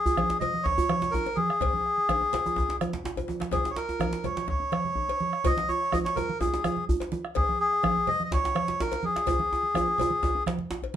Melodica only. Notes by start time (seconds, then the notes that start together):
Already playing: G#4
0.40 D#5
0.63 C#5
1.11 A#4
1.36 G#4
3.52 G#4
3.70 C#5
3.76 A#4
4.25 C#5
4.49 C#5
5.46 D#5
5.68 C#5
5.93 D#5
6.04 C#5
6.16 A#4
6.40 G#4
7.35 G#4
7.60 G#4
8.08 D#5
8.24 D#5
8.33 C#5
8.81 A#4
9.04 G#4